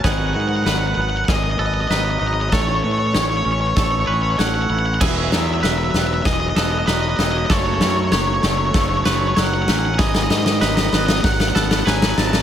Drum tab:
CC |----------------|----------------|x---------------|----------------|
SD |o---o---o---o---|o---o---o---o---|o-o-o-o-o-o-o-o-|o-o-o-o-o-o-o-o-|
BD |o-------o-------|o-------o-------|o-------o-------|o-------o-------|

CC |----------------|
SD |oooooooooooooooo|
BD |o-------o-------|